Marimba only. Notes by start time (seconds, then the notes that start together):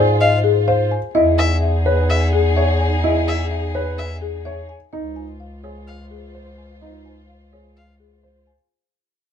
Already playing: D5
0.20 D#5
0.44 G#4
0.68 F5
0.91 G#5
1.15 D#5
1.39 G#5
1.62 E5
1.86 C#5
2.33 G#4
2.57 E5
2.80 G#5
3.04 D#5
3.28 G#5
3.51 E5
3.75 C#5
4.22 G#4
4.45 E5
4.69 G#5
4.93 D#5
5.16 G#5
5.40 F5
5.63 C#5
6.11 G#4
6.58 G#5
6.81 D#5
7.05 G#5
7.29 F5
7.52 C#5
8.00 G#4
8.47 G#5